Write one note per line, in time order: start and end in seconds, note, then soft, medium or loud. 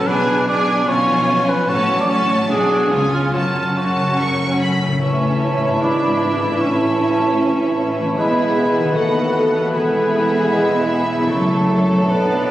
0.07 0.87 B1 soft
0.07 0.87 B2 soft
0.07 0.47 D4 soft
0.07 0.46 G#4 soft
0.07 0.47 B4 medium
0.07 0.47 G#5 soft
0.28 0.68 B3 soft
0.48 0.87 D4 soft
0.48 0.90 D4 soft
0.48 0.87 G#4 medium
0.48 0.88 D5 medium
0.48 0.88 G#5 medium
0.69 1.71 B3 soft
0.88 1.67 B1 medium
0.88 1.71 B2 medium
0.88 1.67 B2 medium
0.88 1.67 C#4 medium
0.88 1.67 F4 medium
0.88 1.50 C#5 medium
0.88 1.68 G#5 medium
1.09 1.48 F3 soft
1.29 2.08 C#4 soft
1.49 1.71 F3 soft
1.49 1.70 B4 medium
1.68 2.48 A1 medium
1.68 2.48 A2 medium
1.68 2.51 A2 medium
1.68 2.07 C#4 medium
1.68 2.08 F#4 medium
1.68 1.99 C#5 medium
1.68 2.08 A5 medium
1.89 2.29 F#3 soft
2.00 2.11 D5 medium
2.08 2.48 C#4 medium
2.08 2.51 C#4 soft
2.08 2.49 F#4 medium
2.08 2.38 C#5 medium
2.08 2.49 A5 medium
2.30 2.93 F#3 soft
2.49 2.91 B1 medium
2.49 2.91 B2 medium
2.49 2.93 B2 medium
2.49 2.90 D4 soft
2.49 2.90 F#4 medium
2.49 3.11 G#4 medium
2.49 2.91 G#5 soft
2.71 2.93 D4 soft
2.71 2.93 F#4 soft
2.91 3.33 C#2 soft
2.91 3.34 C#3 soft
2.91 3.36 C#3 soft
2.91 3.32 C#4 soft
2.91 3.34 F4 soft
2.91 3.33 G#5 soft
3.13 3.76 C#4 soft
3.13 3.33 F4 medium
3.13 3.36 F4 soft
3.33 4.83 F#1 soft
3.33 4.83 F#2 soft
3.33 4.19 F#2 soft
3.33 3.75 C#4 soft
3.33 3.78 F4 medium
3.33 3.76 F#4 soft
3.33 3.75 A5 soft
3.55 3.97 C#3 soft
3.76 4.81 C#4 soft
3.76 4.61 C#4 soft
3.76 4.61 F#4 soft
3.76 4.81 F#4 soft
3.76 4.16 A5 soft
3.98 4.82 C#3 soft
4.18 5.05 F#2 soft
4.18 4.61 C#6 soft
4.41 4.89 A3 soft
4.60 4.94 C#4 soft
4.60 5.02 B5 soft
4.84 5.75 A2 soft
4.84 5.05 C#3 soft
4.91 5.77 A3 soft
4.95 5.80 C#4 soft
5.00 5.78 A1 soft
5.00 5.78 A2 soft
5.00 8.15 E3 soft
5.00 5.78 C#4 soft
5.00 5.77 E4 soft
5.00 8.14 E4 soft
5.00 8.15 E4 medium
5.00 5.78 C#5 soft
5.00 8.14 E5 soft
5.04 5.78 A5 soft
5.64 6.54 G#2 soft
5.69 6.56 B3 soft
5.73 6.58 D4 soft
5.78 6.57 D4 soft
5.78 6.56 E4 soft
5.82 6.61 G#1 soft
5.82 6.61 G#2 soft
5.82 6.57 D4 soft
5.82 6.62 D5 soft
5.82 6.61 B5 soft
6.43 8.11 A2 soft
6.48 8.14 A3 soft
6.53 8.16 C#4 soft
6.57 8.08 E4 soft
6.61 8.15 A1 soft
6.61 8.15 A2 soft
6.61 8.15 C#4 soft
6.61 8.17 C#5 soft
6.61 8.16 A5 soft
8.00 8.89 E3 soft
8.05 8.82 B3 soft
8.09 8.94 E4 soft
8.14 8.96 G#4 soft
8.18 8.95 E1 soft
8.18 8.95 E2 soft
8.18 8.98 G#3 soft
8.18 11.27 B3 soft
8.18 11.27 B3 medium
8.18 8.98 E4 soft
8.18 8.93 G#4 soft
8.18 11.00 B4 soft
8.18 8.92 E5 soft
8.18 11.27 B5 soft
8.78 9.67 D#3 soft
8.83 9.60 B3 soft
8.88 9.72 F#4 soft
8.92 9.74 A4 soft
8.96 9.74 D#2 medium
8.96 9.75 D#2 soft
8.96 10.54 A3 soft
8.96 9.76 F#4 soft
8.96 9.71 A4 medium
8.96 9.71 A4 soft
8.96 9.71 F#5 soft
9.57 11.24 E3 soft
9.61 11.26 B3 soft
9.66 11.21 E4 soft
9.70 11.31 G#4 soft
9.70 11.27 G#4 medium
9.70 12.06 E5 soft
9.75 11.31 E1 medium
9.75 11.31 E2 medium
9.75 11.83 E4 medium
10.53 11.04 G#3 medium
11.13 12.03 F#2 soft
11.18 12.51 A3 soft
11.23 12.07 E4 soft
11.27 12.10 F#1 medium
11.27 12.51 F#3 medium
11.27 12.04 A4 soft
11.27 12.51 A4 medium
11.27 12.12 C#5 medium
11.31 12.10 F#2 medium
11.31 12.06 A3 medium
11.31 12.51 A3 medium
11.31 12.06 E4 medium
11.31 12.51 A5 medium
11.92 12.51 B2 medium
11.96 12.51 B3 soft
12.01 12.51 D4 soft
12.05 12.51 A4 soft
12.09 12.51 B1 medium
12.09 12.51 B2 medium
12.09 12.51 B3 medium
12.09 12.51 D4 medium
12.09 12.51 B4 medium
12.09 12.51 D5 medium